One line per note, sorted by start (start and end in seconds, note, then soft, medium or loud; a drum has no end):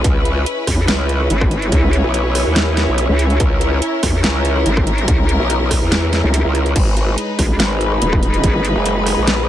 0.00 1.37 G#4 medium
0.00 3.36 B4 medium
0.00 0.93 D#5 medium
0.04 0.45 C#2 medium
0.04 6.72 C#4 medium
0.04 6.72 E4 medium
0.04 6.76 E4 medium
0.04 kick loud
0.04 closed hi-hat medium
0.25 closed hi-hat soft
0.33 8.20 C#5 loud
0.46 closed hi-hat medium
0.67 0.87 E2 loud
0.67 kick medium
0.67 cross-stick medium
0.67 open hi-hat medium
0.88 1.29 C#2 loud
0.88 snare loud
0.88 closed hi-hat medium
1.09 closed hi-hat soft
1.20 cross-stick medium
1.30 1.71 G#1 medium
1.30 closed hi-hat medium
1.41 kick loud
1.41 cross-stick medium
1.51 closed hi-hat medium
1.62 closed hi-hat soft
1.72 2.02 C#2 loud
1.72 kick loud
1.72 closed hi-hat medium
1.93 closed hi-hat medium
2.04 2.44 B1 loud
2.14 closed hi-hat medium
2.35 cross-stick medium
2.35 open hi-hat medium
2.46 2.86 D#2 loud
2.56 snare loud
2.56 closed hi-hat medium
2.77 snare medium
2.77 closed hi-hat medium
2.88 3.07 B1 loud
2.98 closed hi-hat medium
3.09 3.38 C#2 loud
3.19 closed hi-hat medium
3.30 closed hi-hat soft
3.40 3.80 C#2 loud
3.40 6.72 A#4 medium
3.40 kick loud
3.40 closed hi-hat medium
3.61 closed hi-hat medium
3.82 closed hi-hat medium
4.03 4.22 E2 loud
4.03 kick medium
4.03 cross-stick medium
4.03 open hi-hat loud
4.24 4.64 C#2 loud
4.24 snare loud
4.24 closed hi-hat medium
4.45 closed hi-hat medium
4.56 cross-stick medium
4.66 5.06 G#1 loud
4.66 closed hi-hat medium
4.77 kick loud
4.77 cross-stick medium
4.87 closed hi-hat medium
4.98 closed hi-hat soft
5.08 5.38 C#2 loud
5.08 kick loud
5.08 closed hi-hat medium
5.29 closed hi-hat medium
5.40 5.80 B1 loud
5.50 closed hi-hat medium
5.71 kick medium
5.71 cross-stick medium
5.71 open hi-hat medium
5.82 6.22 E2 medium
5.92 snare loud
5.92 closed hi-hat medium
6.13 snare medium
6.13 closed hi-hat medium
6.24 6.43 C#2 loud
6.34 closed hi-hat medium
6.45 6.74 C#2 loud
6.55 closed hi-hat medium
6.66 closed hi-hat soft
6.76 7.16 G#1 loud
6.76 9.49 G#3 medium
6.76 9.49 D#4 medium
6.76 9.49 G#4 medium
6.76 9.49 B4 medium
6.76 kick loud
6.76 closed hi-hat medium
6.76 crash medium
6.90 9.49 B5 medium
6.97 closed hi-hat medium
7.09 9.49 D#5 medium
7.18 closed hi-hat medium
7.39 7.58 B1 medium
7.39 kick medium
7.39 cross-stick medium
7.39 open hi-hat medium
7.60 8.00 G#1 medium
7.60 snare loud
7.60 closed hi-hat medium
7.81 closed hi-hat medium
7.92 cross-stick soft
8.02 8.42 D#1 loud
8.02 closed hi-hat medium
8.13 kick loud
8.13 cross-stick medium
8.23 closed hi-hat medium
8.34 closed hi-hat soft
8.44 8.74 G#1 loud
8.44 kick loud
8.44 closed hi-hat medium
8.65 closed hi-hat medium
8.76 9.16 F#1 loud
8.86 closed hi-hat medium
9.06 cross-stick medium
9.06 open hi-hat medium
9.18 9.49 A#1 medium
9.27 snare loud
9.27 closed hi-hat medium